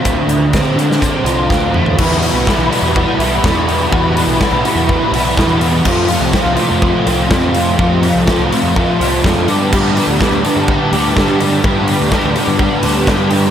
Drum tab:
CC |----------------|x---------------|----------------|x---------------|
HH |x-x-x-x-x-x-----|--o---o---o---o-|--o---o---o---o-|--o---o---o---o-|
SD |----o--o----o---|----o-------o---|----o-------o---|----o-------o---|
T2 |--------------o-|----------------|----------------|----------------|
FT |---------------o|----------------|----------------|----------------|
BD |o---o---o---o---|o---o---o---o---|o---o---o---o---|o---o---o---o---|

CC |----------------|x---------------|----------------|
HH |--o---o---o---o-|--o---o---o---o-|--o---o---o---o-|
SD |----o-------o---|----o-------o---|----o-------o---|
T2 |----------------|----------------|----------------|
FT |----------------|----------------|----------------|
BD |o---o---o---o---|o---o---o---o---|o---o---o---o---|